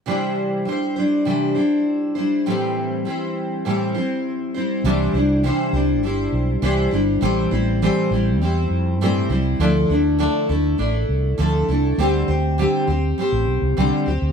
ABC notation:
X:1
M:4/4
L:1/16
Q:1/4=101
K:C
V:1 name="Steel-string acoustic guitar"
[C,E,G,DEc]4 [G,DEc]2 [G,DEc]2 [C,E,G,DEc]2 [G,DEc]4 [G,DEc]2 | [A,,E,G,CEc]4 [G,CEc]4 [A,,E,G,CEc]2 [G,CEc]4 [G,CEc]2 | [C,E,G,DEc]2 [G,DEc]2 [C,E,G,DEc]2 [G,DEc]2 [G,DEc]4 [C,E,G,DEc]2 [G,DEc]2 | [A,,E,G,CEc]2 [G,CEc]2 [A,,E,G,CEc]2 [G,CEc]2 [G,CEc]4 [A,,E,G,CEc]2 [G,CEc]2 |
[D,F,A,DEA]2 [A,DEA]2 [D,F,A,DEA]2 [A,DEA]2 [A,DEA]4 [D,F,A,DEA]2 [A,DEA]2 | [D,G,CGc]2 [CGc]2 [D,G,CGc]2 [CGc]2 [G,CGc]4 [D,G,CGc]2 [CGc]2 |]
V:2 name="Fretless electric bass" clef=bass
z16 | z16 | C,,2 C,,3 z C,,2 G,,,2 B,,,2 C,,2 G,,,2 | A,,,2 A,,,3 z A,,,2 E,,2 F,,2 G,,2 C,,2 |
D,,2 D,,3 z D,,2 A,,,2 C,,2 D,,2 C,,2 | D,,2 D,,3 z D,,2 z A,,, B,,, C,, C,, z D,, D,, |]